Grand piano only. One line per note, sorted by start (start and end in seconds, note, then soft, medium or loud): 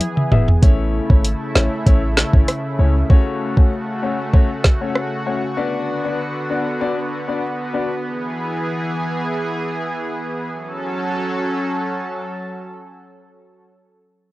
0.31 0.46 B3 medium
0.31 0.46 E4 medium
0.31 0.46 G#4 medium
0.31 0.46 E5 medium
0.62 1.06 A3 medium
0.62 1.06 C#4 medium
0.62 1.06 E4 medium
0.62 1.06 C#5 loud
1.10 1.22 A3 medium
1.10 1.22 C#4 medium
1.10 1.23 E4 medium
1.10 1.23 C#5 medium
1.55 1.69 A3 medium
1.55 1.69 C#4 medium
1.55 1.70 E4 medium
1.55 1.70 C#5 medium
1.86 2.00 A3 medium
1.86 2.00 C#4 medium
1.86 2.00 E4 medium
1.86 2.01 C#5 loud
2.33 2.46 A3 medium
2.33 2.46 C#4 medium
2.33 2.46 E4 medium
2.33 2.46 C#5 medium
2.79 2.93 A3 medium
2.79 2.93 C#4 medium
2.79 2.93 E4 medium
2.79 2.93 C#5 medium
3.10 3.53 A3 medium
3.10 3.53 C#4 medium
3.10 3.53 F#4 medium
3.10 3.53 C#5 loud
3.57 3.70 A3 medium
3.57 3.70 C#4 medium
3.57 3.70 F#4 medium
3.57 3.70 C#5 medium
4.02 4.17 A3 medium
4.02 4.17 C#4 medium
4.02 4.17 F#4 medium
4.02 4.17 C#5 medium
4.33 4.48 A3 medium
4.33 4.48 C#4 medium
4.33 4.48 F#4 medium
4.33 4.48 C#5 loud
4.81 4.93 A3 medium
4.81 4.93 C#4 medium
4.81 4.94 F#4 medium
4.81 4.94 C#5 medium
5.26 5.40 A3 medium
5.26 5.41 C#4 medium
5.26 5.41 F#4 medium
5.26 5.41 C#5 medium
5.57 6.01 B3 medium
5.57 6.01 D4 medium
5.57 6.01 F#4 medium
5.57 6.01 D5 loud
6.04 6.17 B3 medium
6.04 6.17 D4 medium
6.04 6.17 F#4 medium
6.04 6.17 D5 medium
6.50 6.64 B3 medium
6.50 6.64 D4 medium
6.50 6.64 F#4 medium
6.50 6.64 D5 medium
6.81 6.95 B3 medium
6.81 6.95 D4 medium
6.81 6.95 F#4 medium
6.81 6.95 D5 loud
7.28 7.41 B3 medium
7.28 7.41 D4 medium
7.28 7.41 F#4 medium
7.28 7.41 D5 medium
7.74 7.88 B3 medium
7.74 7.88 D4 medium
7.74 7.88 F#4 medium
7.74 7.88 D5 medium